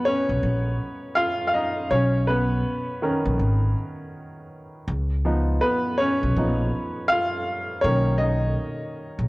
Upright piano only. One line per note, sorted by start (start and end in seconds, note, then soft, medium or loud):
0.00 1.92 F3 medium
0.00 1.93 B3 medium
0.00 1.56 D#4 medium
0.00 1.93 B4 medium
0.05 1.13 C#4 medium
0.05 1.20 C#5 loud
1.15 1.46 F4 medium
1.15 1.46 F5 loud
1.47 1.53 F5 medium
1.54 1.89 D#4 medium
1.54 1.92 D#5 medium
1.91 2.26 C#4 medium
1.91 2.25 C#5 medium
2.27 3.73 B3 medium
2.27 3.72 B4 medium
3.02 4.83 D#3 medium
3.02 4.84 C#4 medium
3.02 4.84 A#4 medium
5.25 5.77 F3 medium
5.25 5.61 B3 medium
5.25 5.78 D#4 medium
5.61 5.96 B3 medium
5.61 5.99 B4 medium
5.97 7.06 C#4 medium
5.97 7.12 C#5 loud
6.37 6.69 F3 soft
6.37 6.70 B3 soft
6.37 6.70 D#4 medium
7.08 7.85 F5 loud
7.12 7.81 F4 medium
7.81 8.91 D#3 medium
7.81 8.91 A#3 medium
7.81 8.17 C#5 loud
7.85 8.91 C#4 medium
8.18 9.28 D#5 medium
8.22 9.28 D#4 medium